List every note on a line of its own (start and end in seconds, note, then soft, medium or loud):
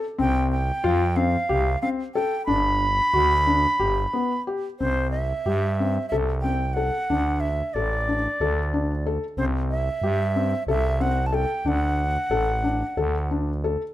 0.18 0.72 C2 loud
0.18 0.53 C4 medium
0.18 0.50 G5 loud
0.52 1.18 G5 medium
0.84 1.37 F2 loud
0.84 1.01 F4 loud
1.16 1.34 C4 medium
1.16 1.81 F5 medium
1.49 1.76 C2 loud
1.49 1.66 G4 medium
1.82 2.00 C4 medium
1.82 1.89 F5 medium
2.14 2.32 A4 medium
2.14 2.45 G5 medium
2.46 3.01 G1 medium
2.46 2.82 D4 medium
2.46 4.41 B5 loud
3.13 3.67 D2 loud
3.13 3.31 F#4 medium
3.47 3.64 D4 medium
3.80 4.07 G1 medium
3.80 3.97 G4 medium
4.13 4.31 B3 medium
4.47 4.64 G4 medium
4.79 5.33 C2 medium
4.79 5.15 C4 medium
4.79 5.10 C5 medium
5.11 6.06 E5 medium
5.46 5.98 G2 medium
5.46 5.63 G4 medium
5.80 5.97 C4 medium
6.09 6.91 C2 medium
6.09 6.29 A4 medium
6.09 6.16 E5 medium
6.41 6.61 C4 medium
6.41 6.75 G5 medium
6.74 6.94 A4 medium
6.74 7.42 F#5 medium
7.10 7.62 D2 medium
7.10 7.44 D4 medium
7.40 7.75 E5 medium
7.74 8.28 A1 medium
7.74 7.93 A4 medium
7.74 9.05 D5 medium
8.08 8.25 D4 medium
8.40 9.19 D2 medium
8.40 8.58 A4 medium
8.74 8.90 D4 medium
9.06 9.23 A4 medium
9.37 9.90 C2 medium
9.37 9.72 C4 medium
9.37 9.45 C5 medium
9.70 10.64 E5 medium
10.02 10.54 G2 medium
10.02 10.20 G4 medium
10.36 10.53 C4 medium
10.67 11.46 C2 loud
10.67 10.85 A4 medium
10.67 11.03 E5 medium
11.00 11.17 C4 medium
11.00 11.28 F#5 medium
11.26 11.36 A5 medium
11.32 11.49 A4 medium
11.32 11.69 G5 medium
11.65 12.18 D2 loud
11.65 12.00 D4 medium
11.65 13.31 F#5 loud
12.30 12.83 A1 medium
12.30 12.48 A4 medium
12.63 12.81 D4 medium
12.97 13.77 D2 medium
12.97 13.15 A4 medium
13.31 13.48 D4 medium
13.64 13.81 A4 medium